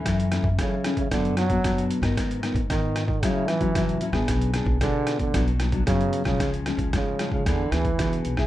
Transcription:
<<
  \new Staff \with { instrumentName = "Nylon-string guitar" } { \time 4/4 \key fis \minor \tempo 4 = 113 << { <e a cis'>8 <e a cis'>16 r16 <e a cis'>16 r16 <e a cis'>16 r16 <fis b d'>8 <fis b d'>16 <fis b d'>16 <fis b d'>8. <dis b dis'>16~ | <dis b dis'>8 <dis b dis'>16 r16 <dis b dis'>8. r16 <fis cis' e'>8 <fis cis' e'>16 <fis cis' e'>16 <fis cis' e'>8 <fis cis' e'>16 <b d' gis'>16~ | <b d' gis'>8 <b d' gis'>8 <b d' gis'>8. r16 <fis b d'>16 r16 <fis b d'>16 <fis b d'>16 <fis b>8. <eis gis cis'>16~ | <eis gis cis'>8 <eis gis cis'>8 <eis gis cis'>8 <eis gis cis'>8 <b d' gis'>16 r16 <b d' gis'>16 r16 <b d' gis'>8. <cis' e' gis'>16 | } \\ { fis,4 cis4 b,4 b,4 | gis,4 dis4 a,4 a,4 | b,4 b,4 b,4 fis,4 | cis4 gis,4 e4 b,4 | } >> }
  \new Staff \with { instrumentName = "Trombone" } { \clef bass \time 4/4 \key fis \minor r4 cis8. cis16 d8 fis4 r8 | r4 dis8. dis16 cis8 e4 r8 | r4 d8. d8 r8. cis8. cis16~ | cis16 r8. cis8. cis16 d8 e4 r8 | }
  \new Staff \with { instrumentName = "Upright bass" } { \clef bass \time 4/4 \key fis \minor fis,8. fis,16 fis4 fis,4 fis,8 r16 g,16 | gis,8. gis,16 gis,4 a,4 cis,8 r16 a,16 | b,,8. b,,16 b,4 b,,4 fis,8 r16 b,,16 | cis,8. cis,16 cis4 e,8 d,8 cis,8 b,,8 | }
  \new DrumStaff \with { instrumentName = "Drums" } \drummode { \time 4/4 <hh bd ss>16 hh16 <hh ss>16 bd16 <hh bd ss>8 <hh ss>16 <hh bd>16 <hh bd ss>16 hh16 <hh ss>16 <hh bd>16 <hh bd ss>16 hh16 hh16 <hh bd ss>16 | <hh bd ss>16 hh16 <hh ss>16 <hh bd>16 <hh bd ss>8 <hh ss>16 bd16 <hh bd ss>8 <hh ss>16 <hh bd>16 <hh bd ss>16 hh16 hh16 <bd ss>16 | <hh bd ss>16 hh16 <hh ss>16 bd16 <hh bd ss>8 <hh ss>16 <hh bd>16 <hh bd ss>16 hh16 <hh ss>16 <hh bd>16 <hh bd ss>16 hh16 hh16 <hh bd ss>16 | <hh bd ss>16 hh16 <hh ss>16 <hh bd>16 <hh bd ss>8 <hh ss>16 bd16 <hh bd ss>8 <hh ss>16 <hh bd>16 <hh bd ss>16 hh16 hh16 <bd ss>16 | }
>>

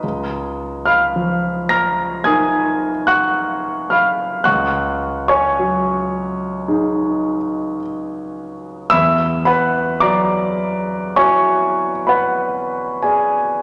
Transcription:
<<
  \new Staff \with { instrumentName = "Grand piano" } { \time 4/4 \key fis \major \tempo 4 = 54 <dis'' ais'' dis'''>8. <eis'' b'' eis'''>8. <ais'' eis''' ais'''>8 <gis'' dis''' gis'''>8. <fis'' cis''' fis'''>8. <eis'' b'' eis'''>8 | <fis'' cis''' fis'''>8. <cis'' gis'' cis'''>2~ <cis'' gis'' cis'''>16 r4 | <e'' b'' e'''>8 <b' fis'' b''>8 <d'' ais'' d'''>4 <cis'' gis'' cis'''>8. <b' fis'' b''>8. <gis' d'' gis''>8 | }
  \new Staff \with { instrumentName = "Grand piano" } { \time 4/4 \key fis \major cis,4 eis4 <dis' ais'>2 | cis,4 fis4 <dis' gis'>2 | e,4 fis4 <e' fis'>2 | }
>>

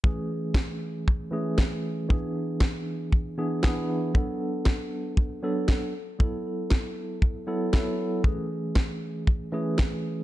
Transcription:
<<
  \new Staff \with { instrumentName = "Tine electric piano" } { \time 4/4 \key a \major \tempo 4 = 117 <e a cis' gis'>2~ <e a cis' gis'>8 <e a cis' gis'>4. | <e b d' gis'>2~ <e b d' gis'>8 <e b d' gis'>8 <e b d' gis'>4 | <fis b d' a'>2~ <fis b d' a'>8 <fis b d' a'>4 r8 | <fis b e' a'>2~ <fis b e' a'>8 <fis b e' a'>8 <fis b e' a'>4 |
<e a cis' gis'>2~ <e a cis' gis'>8 <e a cis' gis'>4. | }
  \new DrumStaff \with { instrumentName = "Drums" } \drummode { \time 4/4 bd4 <bd sn>4 bd4 <bd sn>4 | bd4 <bd sn>4 bd4 <bd sn>4 | bd4 <bd sn>4 bd4 <bd sn>4 | bd4 <bd sn>4 bd4 <bd sn>4 |
bd4 <bd sn>4 bd4 <bd sn>4 | }
>>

